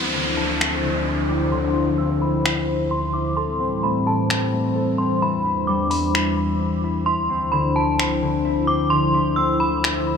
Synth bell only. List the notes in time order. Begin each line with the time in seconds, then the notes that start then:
Already playing: C6
0.13 B5
0.37 A5
1.29 D6
1.52 C6
1.98 E6
2.22 B5
2.91 C6
3.13 D6
3.37 C6
3.83 B5
4.07 A5
4.98 C6
5.22 B5
5.67 D6
5.90 B5
7.06 C6
7.52 B5
7.76 A5
8.67 D6
8.90 C6
9.36 E6
9.60 B5